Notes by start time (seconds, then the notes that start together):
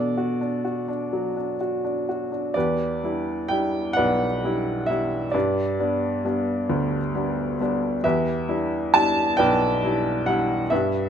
Already playing: B2 D4 A4 D5
0.17 F#4
0.41 D4
0.65 F#4
0.88 D4
1.13 F#3
1.37 D4
1.61 F#4
1.84 D4
2.09 F#4
2.32 D4
2.54 E2 G4 B4 D5
3.03 G3 D4 E4
3.48 G3 D4 E4 G5
3.93 B4 D5 F#5
3.98 B1
4.44 G3 D4 E4
4.86 G3 D4 E4 E5
5.31 G2 G4 B4 D5
5.79 G3 B3 D4
6.24 G3 B3 D4
6.70 D2
7.14 G3 B3 D4
7.60 G3 B3 D4
8.04 E2 G4 B4 E5
8.48 G3 D4 E4
8.93 G3 D4 E4 A5
9.37 B1 B4 D5 G5
9.84 G3 D4 E4
10.26 G3 D4 E4 F#5
10.70 G2 G4 B4 E5